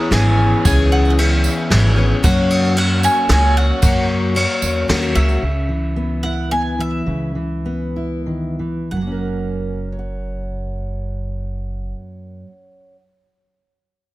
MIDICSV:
0, 0, Header, 1, 7, 480
1, 0, Start_track
1, 0, Tempo, 531444
1, 579, Time_signature, 3, 2, 24, 8
1, 5380, Tempo, 565504
1, 6820, Tempo, 632244
1, 7780, Tempo, 670391
1, 11524, End_track
2, 0, Start_track
2, 0, Title_t, "Mandolin"
2, 0, Program_c, 0, 25
2, 0, Note_on_c, 0, 82, 90
2, 114, Note_off_c, 0, 82, 0
2, 117, Note_on_c, 0, 80, 91
2, 579, Note_off_c, 0, 80, 0
2, 590, Note_on_c, 0, 80, 92
2, 829, Note_off_c, 0, 80, 0
2, 832, Note_on_c, 0, 78, 84
2, 996, Note_on_c, 0, 75, 63
2, 1006, Note_off_c, 0, 78, 0
2, 1058, Note_off_c, 0, 75, 0
2, 1074, Note_on_c, 0, 76, 74
2, 1748, Note_off_c, 0, 76, 0
2, 2027, Note_on_c, 0, 78, 96
2, 2502, Note_off_c, 0, 78, 0
2, 2512, Note_on_c, 0, 78, 108
2, 2744, Note_off_c, 0, 78, 0
2, 2747, Note_on_c, 0, 80, 112
2, 2964, Note_off_c, 0, 80, 0
2, 2994, Note_on_c, 0, 80, 104
2, 3221, Note_off_c, 0, 80, 0
2, 3225, Note_on_c, 0, 78, 103
2, 3666, Note_off_c, 0, 78, 0
2, 4655, Note_on_c, 0, 76, 98
2, 5613, Note_on_c, 0, 78, 76
2, 5639, Note_off_c, 0, 76, 0
2, 5849, Note_off_c, 0, 78, 0
2, 5853, Note_on_c, 0, 80, 89
2, 6093, Note_off_c, 0, 80, 0
2, 6100, Note_on_c, 0, 76, 74
2, 7264, Note_off_c, 0, 76, 0
2, 7775, Note_on_c, 0, 78, 58
2, 9919, Note_off_c, 0, 78, 0
2, 11524, End_track
3, 0, Start_track
3, 0, Title_t, "String section"
3, 0, Program_c, 1, 48
3, 0, Note_on_c, 1, 59, 83
3, 0, Note_on_c, 1, 64, 77
3, 0, Note_on_c, 1, 68, 73
3, 0, Note_on_c, 1, 73, 95
3, 1983, Note_off_c, 1, 64, 0
3, 1984, Note_off_c, 1, 68, 0
3, 1985, Note_off_c, 1, 59, 0
3, 1989, Note_off_c, 1, 73, 0
3, 2032, Note_on_c, 1, 61, 80
3, 2035, Note_on_c, 1, 58, 83
3, 2035, Note_on_c, 1, 66, 84
3, 2037, Note_on_c, 1, 73, 91
3, 4875, Note_off_c, 1, 61, 0
3, 4876, Note_off_c, 1, 58, 0
3, 4877, Note_off_c, 1, 66, 0
3, 4878, Note_off_c, 1, 73, 0
3, 11524, End_track
4, 0, Start_track
4, 0, Title_t, "Twelve-string acoustic guitar"
4, 0, Program_c, 2, 25
4, 0, Note_on_c, 2, 59, 72
4, 0, Note_on_c, 2, 61, 75
4, 0, Note_on_c, 2, 68, 74
4, 98, Note_off_c, 2, 59, 0
4, 98, Note_on_c, 2, 52, 63
4, 109, Note_off_c, 2, 61, 0
4, 109, Note_off_c, 2, 68, 0
4, 109, Note_on_c, 2, 59, 70
4, 113, Note_on_c, 2, 61, 59
4, 119, Note_on_c, 2, 68, 79
4, 578, Note_off_c, 2, 52, 0
4, 583, Note_off_c, 2, 59, 0
4, 588, Note_off_c, 2, 68, 0
4, 592, Note_on_c, 2, 49, 92
4, 599, Note_on_c, 2, 59, 94
4, 601, Note_off_c, 2, 61, 0
4, 601, Note_on_c, 2, 52, 91
4, 605, Note_on_c, 2, 61, 98
4, 607, Note_on_c, 2, 68, 111
4, 1050, Note_off_c, 2, 52, 0
4, 1060, Note_off_c, 2, 59, 0
4, 1061, Note_on_c, 2, 52, 71
4, 1064, Note_off_c, 2, 49, 0
4, 1071, Note_on_c, 2, 59, 66
4, 1072, Note_off_c, 2, 68, 0
4, 1074, Note_off_c, 2, 61, 0
4, 1078, Note_on_c, 2, 61, 73
4, 1084, Note_on_c, 2, 68, 80
4, 1527, Note_off_c, 2, 52, 0
4, 1537, Note_off_c, 2, 59, 0
4, 1538, Note_on_c, 2, 52, 64
4, 1548, Note_on_c, 2, 59, 66
4, 1549, Note_off_c, 2, 68, 0
4, 1552, Note_off_c, 2, 61, 0
4, 1556, Note_on_c, 2, 61, 69
4, 1561, Note_on_c, 2, 68, 72
4, 1760, Note_off_c, 2, 68, 0
4, 1771, Note_on_c, 2, 68, 62
4, 1772, Note_off_c, 2, 61, 0
4, 1777, Note_off_c, 2, 52, 0
4, 1777, Note_off_c, 2, 59, 0
4, 1782, Note_on_c, 2, 61, 56
4, 1788, Note_on_c, 2, 59, 58
4, 2012, Note_on_c, 2, 42, 96
4, 2013, Note_off_c, 2, 68, 0
4, 2016, Note_off_c, 2, 61, 0
4, 2017, Note_on_c, 2, 49, 89
4, 2020, Note_off_c, 2, 59, 0
4, 2021, Note_on_c, 2, 54, 88
4, 2024, Note_on_c, 2, 58, 89
4, 2025, Note_on_c, 2, 66, 102
4, 2027, Note_on_c, 2, 61, 98
4, 2480, Note_off_c, 2, 54, 0
4, 2487, Note_off_c, 2, 58, 0
4, 2491, Note_on_c, 2, 54, 66
4, 2493, Note_off_c, 2, 42, 0
4, 2495, Note_off_c, 2, 49, 0
4, 2498, Note_on_c, 2, 58, 72
4, 2499, Note_off_c, 2, 66, 0
4, 2506, Note_off_c, 2, 61, 0
4, 2510, Note_on_c, 2, 61, 66
4, 2514, Note_on_c, 2, 66, 70
4, 2956, Note_off_c, 2, 54, 0
4, 2967, Note_on_c, 2, 54, 70
4, 2968, Note_off_c, 2, 58, 0
4, 2974, Note_off_c, 2, 61, 0
4, 2975, Note_off_c, 2, 66, 0
4, 2977, Note_on_c, 2, 61, 69
4, 2979, Note_on_c, 2, 58, 78
4, 2985, Note_on_c, 2, 66, 83
4, 3446, Note_off_c, 2, 54, 0
4, 3446, Note_off_c, 2, 58, 0
4, 3450, Note_off_c, 2, 66, 0
4, 3451, Note_on_c, 2, 49, 100
4, 3452, Note_on_c, 2, 42, 90
4, 3457, Note_on_c, 2, 54, 79
4, 3457, Note_on_c, 2, 58, 86
4, 3458, Note_off_c, 2, 61, 0
4, 3461, Note_on_c, 2, 66, 104
4, 3462, Note_on_c, 2, 61, 103
4, 3916, Note_off_c, 2, 54, 0
4, 3926, Note_on_c, 2, 54, 78
4, 3927, Note_off_c, 2, 58, 0
4, 3932, Note_off_c, 2, 49, 0
4, 3933, Note_off_c, 2, 42, 0
4, 3933, Note_off_c, 2, 61, 0
4, 3937, Note_off_c, 2, 66, 0
4, 3938, Note_on_c, 2, 58, 70
4, 3943, Note_on_c, 2, 61, 83
4, 3949, Note_on_c, 2, 66, 84
4, 4397, Note_off_c, 2, 54, 0
4, 4408, Note_off_c, 2, 58, 0
4, 4408, Note_on_c, 2, 54, 69
4, 4414, Note_off_c, 2, 61, 0
4, 4419, Note_on_c, 2, 58, 77
4, 4422, Note_off_c, 2, 66, 0
4, 4425, Note_on_c, 2, 61, 84
4, 4431, Note_on_c, 2, 66, 82
4, 4639, Note_off_c, 2, 66, 0
4, 4646, Note_off_c, 2, 61, 0
4, 4650, Note_on_c, 2, 66, 60
4, 4652, Note_off_c, 2, 54, 0
4, 4654, Note_off_c, 2, 58, 0
4, 4656, Note_on_c, 2, 61, 61
4, 4665, Note_on_c, 2, 58, 56
4, 4670, Note_on_c, 2, 54, 52
4, 4893, Note_off_c, 2, 66, 0
4, 4896, Note_off_c, 2, 61, 0
4, 4900, Note_off_c, 2, 58, 0
4, 4903, Note_off_c, 2, 54, 0
4, 11524, End_track
5, 0, Start_track
5, 0, Title_t, "Steel-string acoustic guitar"
5, 0, Program_c, 3, 25
5, 4897, Note_on_c, 3, 49, 71
5, 5138, Note_off_c, 3, 49, 0
5, 5138, Note_on_c, 3, 52, 55
5, 5386, Note_on_c, 3, 59, 54
5, 5621, Note_on_c, 3, 64, 52
5, 5847, Note_off_c, 3, 59, 0
5, 5857, Note_on_c, 3, 59, 55
5, 6070, Note_off_c, 3, 52, 0
5, 6081, Note_on_c, 3, 52, 53
5, 6298, Note_off_c, 3, 64, 0
5, 6300, Note_off_c, 3, 59, 0
5, 6319, Note_on_c, 3, 49, 59
5, 6554, Note_off_c, 3, 52, 0
5, 6564, Note_on_c, 3, 52, 49
5, 6567, Note_off_c, 3, 49, 0
5, 6822, Note_on_c, 3, 59, 53
5, 7055, Note_on_c, 3, 64, 47
5, 7283, Note_on_c, 3, 51, 47
5, 7524, Note_off_c, 3, 52, 0
5, 7528, Note_off_c, 3, 51, 0
5, 7533, Note_on_c, 3, 52, 45
5, 7750, Note_off_c, 3, 59, 0
5, 7752, Note_off_c, 3, 64, 0
5, 7780, Note_on_c, 3, 42, 51
5, 7782, Note_off_c, 3, 52, 0
5, 7814, Note_on_c, 3, 54, 46
5, 7851, Note_on_c, 3, 58, 43
5, 7888, Note_on_c, 3, 61, 48
5, 7922, Note_on_c, 3, 70, 42
5, 8497, Note_off_c, 3, 61, 0
5, 8500, Note_on_c, 3, 73, 49
5, 8543, Note_off_c, 3, 70, 0
5, 8546, Note_on_c, 3, 78, 50
5, 10286, Note_off_c, 3, 42, 0
5, 10320, Note_off_c, 3, 54, 0
5, 10357, Note_off_c, 3, 58, 0
5, 10673, Note_off_c, 3, 73, 0
5, 10719, Note_off_c, 3, 78, 0
5, 11524, End_track
6, 0, Start_track
6, 0, Title_t, "Upright bass"
6, 0, Program_c, 4, 32
6, 98, Note_on_c, 4, 32, 101
6, 465, Note_off_c, 4, 32, 0
6, 587, Note_on_c, 4, 37, 108
6, 1318, Note_off_c, 4, 37, 0
6, 1538, Note_on_c, 4, 32, 105
6, 1904, Note_off_c, 4, 32, 0
6, 2022, Note_on_c, 4, 42, 120
6, 2754, Note_off_c, 4, 42, 0
6, 2974, Note_on_c, 4, 37, 108
6, 3341, Note_off_c, 4, 37, 0
6, 3455, Note_on_c, 4, 42, 106
6, 4007, Note_off_c, 4, 42, 0
6, 4174, Note_on_c, 4, 40, 80
6, 4390, Note_off_c, 4, 40, 0
6, 4418, Note_on_c, 4, 39, 97
6, 4633, Note_off_c, 4, 39, 0
6, 4655, Note_on_c, 4, 37, 92
6, 4871, Note_off_c, 4, 37, 0
6, 4899, Note_on_c, 4, 37, 68
6, 6297, Note_off_c, 4, 37, 0
6, 6323, Note_on_c, 4, 37, 65
6, 7752, Note_off_c, 4, 37, 0
6, 7782, Note_on_c, 4, 30, 74
6, 9926, Note_off_c, 4, 30, 0
6, 11524, End_track
7, 0, Start_track
7, 0, Title_t, "Drums"
7, 105, Note_on_c, 9, 38, 86
7, 105, Note_on_c, 9, 51, 71
7, 196, Note_off_c, 9, 38, 0
7, 196, Note_off_c, 9, 51, 0
7, 588, Note_on_c, 9, 36, 127
7, 588, Note_on_c, 9, 51, 66
7, 588, Note_on_c, 9, 54, 110
7, 678, Note_off_c, 9, 36, 0
7, 679, Note_off_c, 9, 51, 0
7, 679, Note_off_c, 9, 54, 0
7, 950, Note_on_c, 9, 54, 33
7, 1040, Note_off_c, 9, 54, 0
7, 1069, Note_on_c, 9, 51, 74
7, 1159, Note_off_c, 9, 51, 0
7, 1299, Note_on_c, 9, 54, 94
7, 1390, Note_off_c, 9, 54, 0
7, 1545, Note_on_c, 9, 38, 81
7, 1545, Note_on_c, 9, 51, 58
7, 1636, Note_off_c, 9, 38, 0
7, 1636, Note_off_c, 9, 51, 0
7, 2020, Note_on_c, 9, 54, 92
7, 2022, Note_on_c, 9, 36, 125
7, 2022, Note_on_c, 9, 51, 68
7, 2111, Note_off_c, 9, 54, 0
7, 2112, Note_off_c, 9, 36, 0
7, 2112, Note_off_c, 9, 51, 0
7, 2261, Note_on_c, 9, 51, 70
7, 2351, Note_off_c, 9, 51, 0
7, 2390, Note_on_c, 9, 54, 25
7, 2481, Note_off_c, 9, 54, 0
7, 2497, Note_on_c, 9, 51, 79
7, 2587, Note_off_c, 9, 51, 0
7, 2739, Note_on_c, 9, 54, 105
7, 2830, Note_off_c, 9, 54, 0
7, 2972, Note_on_c, 9, 38, 82
7, 2972, Note_on_c, 9, 51, 65
7, 3062, Note_off_c, 9, 38, 0
7, 3062, Note_off_c, 9, 51, 0
7, 3451, Note_on_c, 9, 51, 72
7, 3451, Note_on_c, 9, 54, 111
7, 3456, Note_on_c, 9, 36, 116
7, 3541, Note_off_c, 9, 51, 0
7, 3541, Note_off_c, 9, 54, 0
7, 3547, Note_off_c, 9, 36, 0
7, 3936, Note_on_c, 9, 51, 78
7, 4027, Note_off_c, 9, 51, 0
7, 4174, Note_on_c, 9, 54, 107
7, 4264, Note_off_c, 9, 54, 0
7, 4419, Note_on_c, 9, 38, 90
7, 4419, Note_on_c, 9, 51, 72
7, 4509, Note_off_c, 9, 38, 0
7, 4509, Note_off_c, 9, 51, 0
7, 4531, Note_on_c, 9, 54, 31
7, 4621, Note_off_c, 9, 54, 0
7, 4654, Note_on_c, 9, 54, 31
7, 4744, Note_off_c, 9, 54, 0
7, 4774, Note_on_c, 9, 54, 31
7, 4865, Note_off_c, 9, 54, 0
7, 11524, End_track
0, 0, End_of_file